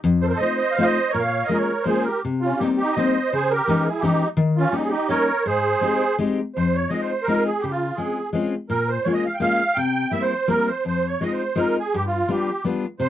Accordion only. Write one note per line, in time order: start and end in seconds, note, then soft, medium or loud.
0.21 0.28 A4 medium
0.21 0.26 C5 medium
0.28 0.32 A#4 medium
0.28 0.38 C5 medium
0.32 0.40 A4 medium
0.37 0.59 C5 medium
0.37 0.56 D#5 medium
0.58 0.74 C5 medium
0.58 0.76 D#5 medium
0.72 0.83 C5 medium
0.72 0.84 F5 medium
0.82 1.10 C5 medium
0.82 1.12 D#5 medium
1.10 1.22 A#4 medium
1.10 1.21 C#5 medium
1.19 1.47 C#5 medium
1.19 1.48 F5 medium
1.44 1.58 A#4 medium
1.44 1.57 D#5 medium
1.55 1.85 C#5 medium
1.60 1.85 A#4 medium
1.82 2.05 C5 medium
1.88 2.06 G#4 medium
2.02 2.20 A#4 medium
2.07 2.22 G4 medium
2.41 2.59 C#4 medium
2.41 2.59 F4 medium
2.57 2.67 G4 medium
2.61 2.70 D#4 medium
2.77 2.96 D#4 medium
2.77 2.95 G4 medium
2.92 3.31 D#5 medium
2.97 3.30 C5 medium
3.31 3.52 G#4 medium
3.31 3.52 C5 medium
3.51 3.86 G4 medium
3.51 3.88 A#4 medium
3.84 4.02 G#4 medium
3.88 4.03 E4 medium
3.99 4.27 G4 medium
4.04 4.29 D#4 medium
4.57 4.73 C#4 medium
4.57 4.74 F4 medium
4.72 4.82 D#4 medium
4.72 4.81 G4 medium
4.81 4.89 G#4 medium
4.88 5.09 D#4 medium
4.88 5.10 G4 medium
5.09 5.44 A#4 medium
5.09 5.46 C#5 medium
5.46 6.16 G#4 medium
5.46 6.15 C5 medium
6.56 6.76 C5 medium
6.74 6.90 C#5 medium
6.89 7.01 D#5 medium
7.00 7.28 C5 medium
7.23 7.43 A#4 medium
7.45 7.63 G#4 medium
7.60 7.72 G4 medium
7.71 7.98 F4 medium
7.95 8.30 G#4 medium
8.70 8.90 A#4 medium
8.89 9.06 C5 medium
9.04 9.14 C#5 medium
9.13 9.24 D#5 medium
9.26 9.35 F5 medium
9.34 9.41 G5 medium
9.41 9.78 F5 loud
9.75 10.13 G5 loud
10.12 10.23 E5 medium
10.21 10.49 C5 medium
10.49 10.70 A#4 medium
10.68 10.84 C5 medium
10.87 11.07 C5 medium
11.07 11.24 C#5 medium
11.22 11.32 D#5 medium
11.33 11.60 C5 medium
11.57 11.76 A#4 medium
11.79 11.95 G#4 medium
11.94 12.04 G4 medium
12.07 12.32 F4 medium
12.33 12.64 G4 medium
12.99 13.09 C5 loud